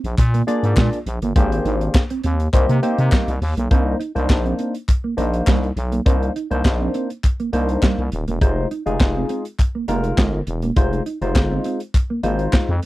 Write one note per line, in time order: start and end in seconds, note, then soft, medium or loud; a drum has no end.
0.04 0.15 A#1 medium
0.04 closed hi-hat medium
0.18 0.42 A#2 loud
0.18 muted clean electric guitar stroke soft
0.18 kick loud
0.18 clap medium
0.18 closed hi-hat medium
0.34 0.44 A#3 medium
0.34 closed hi-hat medium
0.47 0.97 A#3 loud
0.47 0.59 A#3 medium
0.47 0.97 D4 medium
0.47 0.97 F4 medium
0.47 0.97 G#4 medium
0.47 0.98 D5 loud
0.47 closed hi-hat medium
0.63 0.74 G#2 medium
0.63 closed hi-hat medium
0.77 0.90 A#2 loud
0.77 0.88 G#3 loud
0.77 kick loud
0.77 snare loud
0.77 clap medium
0.93 closed hi-hat medium
1.06 1.19 A#1 loud
1.06 muted clean electric guitar stroke medium
1.06 closed hi-hat medium
1.22 1.33 G1 medium
1.22 1.32 A#3 medium
1.22 closed hi-hat medium
1.35 1.60 G#1 loud
1.35 1.47 G#3 medium
1.35 2.02 A#3 medium
1.35 2.02 D4 medium
1.35 2.02 G4 medium
1.35 2.02 G#4 medium
1.35 2.02 C5 loud
1.35 kick loud
1.35 closed hi-hat medium
1.51 muted clean electric guitar stroke soft
1.51 closed hi-hat medium
1.65 1.89 G#1 loud
1.65 1.76 D#4 medium
1.65 closed hi-hat medium
1.81 closed hi-hat medium
1.94 muted clean electric guitar stroke soft
1.94 kick loud
1.94 snare loud
1.94 clap medium
2.10 2.20 C4 medium
2.10 closed hi-hat medium
2.24 2.48 D#2 loud
2.24 2.35 C4 medium
2.24 closed hi-hat medium
2.40 closed hi-hat medium
2.53 2.66 C2 loud
2.53 2.77 A#3 medium
2.53 2.77 C4 medium
2.53 2.77 D#4 medium
2.53 2.77 G4 medium
2.53 2.77 C5 loud
2.53 muted clean electric guitar stroke soft
2.53 kick loud
2.53 clap medium
2.53 closed hi-hat medium
2.69 2.80 C3 loud
2.69 2.79 A#3 medium
2.69 closed hi-hat medium
2.82 3.33 A#3 medium
2.82 2.94 A#3 medium
2.82 3.33 C4 medium
2.82 3.33 D#4 medium
2.82 3.33 G4 medium
2.82 3.33 C5 loud
2.82 closed hi-hat medium
2.98 3.10 C3 loud
2.98 closed hi-hat medium
3.12 3.23 G3 loud
3.12 kick loud
3.12 snare loud
3.12 clap medium
3.12 clap loud
3.28 3.39 C2 loud
3.28 closed hi-hat medium
3.42 3.54 D#2 loud
3.42 muted clean electric guitar stroke medium
3.42 open hi-hat medium
3.57 3.69 B1 loud
3.57 3.67 A#3 medium
3.57 closed hi-hat medium
3.71 3.95 C2 loud
3.71 3.96 A#3 medium
3.71 3.82 C4 medium
3.71 3.96 D4 medium
3.71 3.96 D#4 medium
3.71 3.96 C5 medium
3.71 kick loud
3.71 closed hi-hat medium
3.86 muted clean electric guitar stroke soft
4.00 4.11 D#4 medium
4.00 closed hi-hat medium
4.15 4.27 C2 loud
4.15 4.73 A#3 medium
4.15 4.73 D4 medium
4.15 4.73 D#4 medium
4.15 4.73 C5 loud
4.15 closed hi-hat soft
4.30 4.54 A#1 medium
4.30 kick loud
4.30 snare loud
4.30 clap medium
4.45 4.55 C4 medium
4.45 closed hi-hat soft
4.59 4.70 C4 medium
4.59 closed hi-hat medium
4.75 closed hi-hat medium
4.88 muted clean electric guitar stroke soft
4.88 kick loud
4.88 clap medium
4.88 closed hi-hat medium
5.04 5.14 A#3 medium
5.17 5.42 A#1 medium
5.17 5.68 A#3 medium
5.17 5.29 A#3 medium
5.17 5.67 D4 medium
5.17 5.68 D#4 medium
5.17 5.68 C5 medium
5.17 closed hi-hat medium
5.34 closed hi-hat medium
5.47 5.72 C2 medium
5.47 5.58 G3 medium
5.47 kick loud
5.47 snare loud
5.47 clap medium
5.63 closed hi-hat soft
5.76 6.01 B1 medium
5.76 muted clean electric guitar stroke soft
5.76 closed hi-hat medium
5.92 6.02 A#3 medium
5.92 closed hi-hat medium
6.06 6.30 C2 loud
6.06 6.31 A#3 medium
6.06 6.17 C4 medium
6.06 6.31 D4 medium
6.06 6.31 D#4 medium
6.06 6.31 C5 loud
6.06 kick loud
6.06 closed hi-hat medium
6.22 muted clean electric guitar stroke soft
6.22 closed hi-hat soft
6.36 6.47 D#4 medium
6.36 closed hi-hat medium
6.51 6.63 C2 loud
6.51 7.08 A#3 medium
6.51 7.09 D4 medium
6.51 7.09 D#4 medium
6.51 7.09 C5 loud
6.51 closed hi-hat soft
6.65 6.89 A#1 loud
6.65 kick loud
6.65 snare loud
6.65 clap medium
6.81 6.91 C4 medium
6.94 7.06 C4 medium
6.94 closed hi-hat medium
7.10 closed hi-hat medium
7.24 muted clean electric guitar stroke soft
7.24 kick medium
7.24 clap medium
7.24 closed hi-hat medium
7.40 7.49 A#3 medium
7.40 closed hi-hat soft
7.53 7.77 C2 medium
7.53 8.03 A#3 medium
7.53 7.64 A#3 medium
7.53 8.03 D4 medium
7.53 8.03 D#4 medium
7.53 8.04 C5 medium
7.53 closed hi-hat medium
7.69 closed hi-hat medium
7.83 7.94 G3 medium
7.83 kick loud
7.83 snare loud
7.83 clap medium
7.98 8.10 C2 medium
8.12 8.25 D#1 medium
8.12 muted clean electric guitar stroke soft
8.12 closed hi-hat medium
8.28 8.39 E1 medium
8.28 8.38 A#3 medium
8.28 closed hi-hat medium
8.41 8.66 F1 loud
8.41 8.66 G#3 medium
8.41 8.66 D#4 medium
8.41 8.67 F4 medium
8.41 8.53 F4 medium
8.41 8.67 C5 loud
8.41 kick loud
8.41 closed hi-hat medium
8.57 muted clean electric guitar stroke soft
8.71 8.82 D#4 medium
8.71 closed hi-hat medium
8.86 8.98 F1 medium
8.86 9.44 G#3 medium
8.86 9.44 D#4 medium
8.86 9.44 F4 medium
8.86 9.44 G#4 loud
8.86 closed hi-hat soft
9.00 9.24 F1 medium
9.00 kick loud
9.00 snare loud
9.00 clap medium
9.17 9.26 C4 medium
9.29 9.41 C4 medium
9.29 closed hi-hat medium
9.45 closed hi-hat medium
9.59 muted clean electric guitar stroke soft
9.59 kick loud
9.59 clap medium
9.59 closed hi-hat medium
9.75 9.85 A#3 medium
9.88 10.13 F1 medium
9.88 10.38 G#3 medium
9.88 10.00 A#3 medium
9.88 10.38 D#4 medium
9.88 10.38 F4 medium
9.88 10.39 A#4 medium
9.88 closed hi-hat medium
10.04 closed hi-hat medium
10.18 10.42 G1 loud
10.18 10.29 G#3 medium
10.18 kick loud
10.18 snare loud
10.18 clap medium
10.47 10.71 E1 medium
10.47 muted clean electric guitar stroke medium
10.47 closed hi-hat medium
10.62 10.73 A#3 medium
10.62 closed hi-hat medium
10.76 11.01 F1 loud
10.76 11.02 G#3 medium
10.76 11.02 D#4 medium
10.76 10.88 F4 medium
10.76 11.02 F4 medium
10.76 11.02 C5 loud
10.76 kick loud
10.76 closed hi-hat medium
10.93 muted clean electric guitar stroke soft
10.93 closed hi-hat soft
11.06 11.17 D#4 medium
11.06 closed hi-hat medium
11.22 11.37 F1 loud
11.22 11.79 G#3 medium
11.22 11.79 D#4 medium
11.22 11.79 F4 medium
11.22 11.80 C5 medium
11.22 closed hi-hat soft
11.35 11.60 G1 loud
11.35 kick loud
11.35 snare loud
11.35 clap medium
11.52 11.61 C4 medium
11.64 11.76 C4 medium
11.64 closed hi-hat medium
11.80 closed hi-hat medium
11.94 muted clean electric guitar stroke soft
11.94 kick loud
11.94 clap medium
11.94 closed hi-hat medium
12.10 12.20 A#3 medium
12.23 12.48 G#1 medium
12.23 12.73 G#3 medium
12.23 12.35 A#3 medium
12.23 12.74 D#4 medium
12.23 12.74 F4 medium
12.23 12.74 C5 medium
12.23 closed hi-hat medium
12.39 closed hi-hat soft
12.53 12.64 G#3 medium
12.53 kick loud
12.53 snare loud
12.53 clap medium
12.69 12.80 F2 medium
12.83 closed hi-hat medium